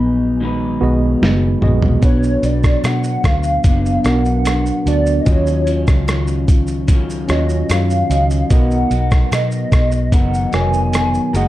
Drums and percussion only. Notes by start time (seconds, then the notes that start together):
1.23 snare
1.62 mid tom
1.82 floor tom
2.03 kick, closed hi-hat, shaker
2.23 shaker
2.43 closed hi-hat, shaker
2.64 kick, cross-stick, shaker
2.84 cross-stick, clap, closed hi-hat, shaker
3.04 shaker
3.24 kick, cross-stick, closed hi-hat, shaker
3.43 shaker
3.64 kick, closed hi-hat, shaker
3.86 shaker
4.04 cross-stick, closed hi-hat, shaker
4.25 shaker
4.45 cross-stick, clap, closed hi-hat, shaker
4.66 shaker
4.87 closed hi-hat, shaker
5.06 shaker
5.26 kick, closed hi-hat, shaker
5.47 shaker
5.67 closed hi-hat, shaker
5.87 kick, cross-stick, shaker
6.08 cross-stick, clap, closed hi-hat, shaker
6.27 shaker
6.48 kick, closed hi-hat, shaker
6.67 shaker
6.88 kick, closed hi-hat, shaker
7.10 shaker
7.29 cross-stick, closed hi-hat, shaker
7.49 shaker
7.70 cross-stick, clap, closed hi-hat, shaker
7.90 shaker
8.11 closed hi-hat, shaker
8.31 shaker
8.50 kick, closed hi-hat, shaker
8.71 shaker
8.91 closed hi-hat, shaker
9.11 kick, cross-stick, shaker
9.32 cross-stick, clap, closed hi-hat, shaker
9.51 shaker
9.72 kick, cross-stick, closed hi-hat, shaker
9.92 shaker
10.12 kick, closed hi-hat, shaker
10.34 shaker
10.53 cross-stick, closed hi-hat, shaker
10.73 shaker
10.93 cross-stick, clap, closed hi-hat, shaker
11.14 shaker
11.35 closed hi-hat, shaker